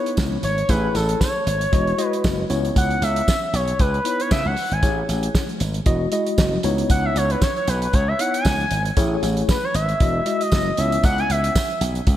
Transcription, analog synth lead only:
0.44 C#5
0.69 B4
0.95 A4
1.21 C#5
2.06 B4
2.77 F#5
3.03 E5
3.55 C#5
3.80 B4
4.06 B4
4.21 C#5
4.32 E5
4.46 F#5
4.73 G#5
6.91 F#5
7.05 E5
7.17 C#5
7.31 B4
7.42 C#5
7.57 C#5
7.69 B4
7.83 B4
7.94 C#5
8.08 E5
8.20 F#5
8.35 G#5
9.50 B4
9.64 C#5
9.75 E5
10.42 D#5
10.79 E5
11.05 F#5
11.19 G#5
11.31 E5

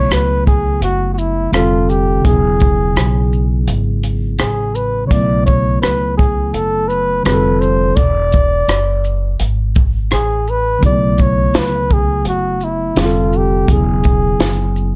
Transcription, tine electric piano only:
Already playing: C#3 F#3 A3 B3 E4
1.51 D3 G3 C4 F4 A4
2.21 C#3 F#3
2.25 B3 E4 G#4
5.06 C#3 F#3 B3
5.12 A3 E4
7.23 D3 G3 C4 F4
7.27 G#4
7.34 A4
10.79 C#3 F#3 B3
10.84 E4 G#4
10.93 A3
12.95 D3 G3 C4 F4 G#4
13.05 A4
13.65 C#3 F#3
13.70 B3 E4 G#4

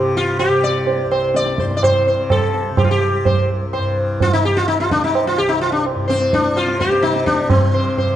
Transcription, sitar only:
Already playing: G4
0.17 F4
0.39 G4
0.64 D5
1.11 C5
1.36 D5
1.60 C5
1.77 D5
1.84 C5
2.08 C5
2.31 A4
2.78 G4
2.84 F4
2.91 G4
3.26 C5
3.73 C5
4.22 F4
4.33 D#4
4.45 G4
4.57 F4
4.68 D#4
4.80 F4
4.91 D4
5.04 D#4
5.27 F4
5.38 G4
5.49 D#4
5.61 F4
5.72 D4
6.08 C4 C5
6.34 D4
6.56 F4 C5
6.79 G4 C5
7.02 D#4 C5
7.26 D4
7.50 C4
7.74 C5
7.98 C5

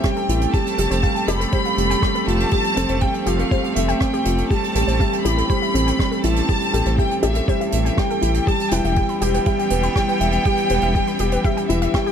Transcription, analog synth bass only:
0.29 A1
0.78 F1
0.91 F1
1.28 F1
1.77 F1
2.27 F1
2.77 F1
2.89 F1
3.26 F1
3.76 F1
4.26 F1
4.75 A1
4.88 A1
5.25 A1
5.74 A1
6.24 A1
6.74 A1
6.86 A1
7.23 A1
7.73 A1
8.22 A1
8.72 E1
8.84 E1
9.21 E1
9.71 E1
10.20 E1
10.70 E1
10.82 E1
11.20 E1
11.69 E1

